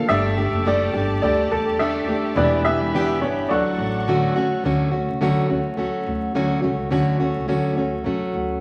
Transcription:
Already playing: F3 A#3 D4 F4 A4 D5
0.08 G1 G3 A3 D4 G4 A4 D5 E5 A5
0.37 A3 D4 G4
0.53 F#1
0.66 G3 A3 D4 G4 D5
0.94 G1 A3 D4 G4
1.21 D2 G3 A3 D4 G4 A4 D5
1.51 E2 D4 A4
1.79 G3 A3 D4 G4 E5
2.08 A3 D4 G4
2.35 E1 E3 B3 D4 E4 G4 B4 D5 E5 B5
2.44 E5
2.65 B3 D4 G4 E5
2.81 E1
2.94 E3 B3 D4 G4
3.21 G1 B3 D4 G4 C#5
3.49 D2 F#3 A3 D4 F#4 A4 D5 F#5 C#6
3.53 F#4
3.78 A1 C#4
4.07 D3 F#3 A3 C#4 F#4
4.36 A3 C#4 F#4
4.64 D2 D3 F#3 A3 C#4 F#4
4.91 A3 C#4 F#4
5.08 C#2
5.21 D3 F#3 A3 C#4 F#4
5.49 D2 A3 C#4 F#4
5.77 F#3 A3 C#4 F#4
6.06 D2 F#4
6.35 D3 F#3 A3 C#4 F#4
6.62 C#2 A3 C#4 F#4
6.91 D2 D3 F#3 A3 C#4 F#4
7.20 A3 C#4 F#4
7.36 C#2
7.48 D2 D3 F#3 A3 C#4 F#4
7.76 D2 A3 C#4 F#4
8.04 D3 F#3 A3 C#4 F#4
8.34 D2 F#4

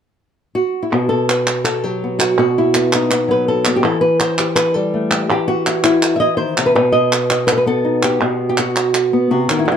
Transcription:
0.55 F#4
0.83 E4
0.90 B2 F#4
1.09 A4
1.29 B4, clap
1.47 clap
1.64 A4, clap
1.83 F#3 G4
2.04 B3
2.19 F#4, clap
2.38 B2 F#4
2.58 E4
2.74 B3, clap
2.93 D#4, clap
3.11 B3, clap
3.28 F#3 B4
3.48 A4
3.65 B3, clap
3.76 G4
3.84 E3 A4
4.01 B4
4.20 C5, clap
4.38 G4, clap
4.55 B4, clap
4.74 G3 A4
4.94 A3
5.11 G4, clap
5.29 E3 G4
5.48 F#4
5.66 E4, clap
5.84 E4, clap
6.03 clap
6.16 E5
6.20 E4 D#5
6.37 D#3 C5
6.57 C3, clap
6.66 B4
6.75 B2 B4
6.92 D#5
7.12 clap
7.30 D#5, clap
7.47 B4, clap
7.52 A4
7.57 B4
7.66 B3 A4
7.84 D#4
8.03 G4, clap
8.21 B2, clap
8.49 G4
8.57 F#4, clap
8.76 clap
8.95 clap
9.13 B3
9.31 C3 F#4
9.49 D#3, clap
9.59 E4
9.65 E3 F#4
9.72 E4

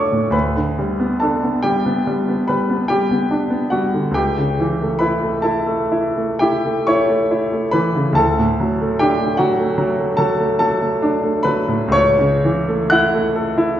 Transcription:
Already playing: D2 A3 D4 F#4 A4 C#5 D5 A5 C#6 D6 E6
0.12 A2
0.30 D2 B4 B5
0.56 D3
0.79 G3
1.00 B3
1.20 D4 A4 A5
1.43 B3
1.63 G3 G4 G5
1.86 B3
2.07 G3
2.29 B3
2.48 G3 B4 B5
2.70 B3
2.88 G3 G4 G5
3.11 B3
3.31 D4
3.50 B3
3.70 G3 F#4 F#5
3.94 D3
4.11 C#2 G4 G5
4.38 C#3
4.60 E3
4.82 A3
4.99 E4 B4 B5
5.23 A3
5.42 E4 A4 A5
5.67 A3
5.92 E4
6.17 A3
6.39 E4 G4 G5
6.66 A3
6.87 E4 C#5 C#6
7.09 A3
7.31 E4
7.52 A3
7.71 E3 B4 B5
7.95 C#3
8.13 D2 A5
8.17 A4
8.39 A2
8.60 F#3
8.81 A3
8.99 D4 G4 G5
9.20 A3
9.37 F#3 F#4 F#5
9.59 A3
9.78 F#3
9.99 A3
10.17 F#3 A4 A5
10.40 A3
10.59 F#3 A4 A5
10.81 A3
11.02 D4
11.23 A3
11.43 F#3 B4 B5
11.68 A2
11.88 C#2 C#6
11.93 C#5
12.19 C#3
12.45 E3
12.68 A3
12.90 E4 F#5 F#6
13.14 A3
13.36 A4
13.58 E4

